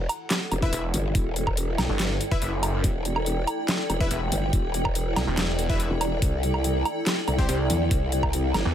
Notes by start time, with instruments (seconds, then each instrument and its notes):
Already playing: ambient pad E4 A4 D5 G5
0.09 closed hi-hat, low woodblock
0.30 snare, clap, closed hi-hat
0.52 wobble bass E1, closed hi-hat, low woodblock
0.62 supersaw synth E4 B4 E5, kick
0.73 detuned saw bass E1, closed hi-hat
0.94 wobble bass G1, open hi-hat
1.15 wobble bass E1, kick, closed hi-hat
1.36 closed hi-hat
1.47 kick, low woodblock
1.57 closed hi-hat
1.78 wobble bass B1, snare, closed hi-hat, low woodblock
1.89 detuned saw bass G1
1.99 snare, clap, closed hi-hat
2.21 closed hi-hat
2.31 supersaw synth E4 B4 E5, kick
2.42 detuned saw bass F#1, closed hi-hat
2.63 open hi-hat, low woodblock
2.84 wobble bass E1, kick, closed hi-hat
3.05 closed hi-hat
3.16 low woodblock
3.26 closed hi-hat
3.47 closed hi-hat, low woodblock
3.69 snare, clap, closed hi-hat
3.90 wobble bass E1, closed hi-hat, low woodblock
4.01 supersaw synth E4 B4 E5, kick
4.11 detuned saw bass E1, closed hi-hat
4.32 wobble bass G1, open hi-hat
4.53 wobble bass E1, kick, closed hi-hat
4.74 closed hi-hat
4.85 kick, low woodblock
4.95 closed hi-hat
5.16 wobble bass B1, snare, closed hi-hat, low woodblock
5.27 detuned saw bass E1
5.38 snare, clap, closed hi-hat
5.59 closed hi-hat
5.70 supersaw synth E4 B4 E5, kick
5.80 closed hi-hat
5.91 wobble bass E1
6.01 open hi-hat, low woodblock
6.22 wobble bass C2, kick, closed hi-hat
6.43 closed hi-hat
6.54 low woodblock
6.64 closed hi-hat
6.85 closed hi-hat, low woodblock
7.07 snare, clap, closed hi-hat
7.28 wobble bass C2, closed hi-hat, low woodblock
7.39 supersaw synth C4 G4 C5, kick
7.49 detuned saw bass C2, closed hi-hat
7.70 wobble bass E2, open hi-hat
7.91 wobble bass C2, kick, closed hi-hat
8.12 closed hi-hat
8.23 kick, low woodblock
8.33 closed hi-hat
8.54 wobble bass G1, snare, closed hi-hat, low woodblock
8.65 detuned saw bass E2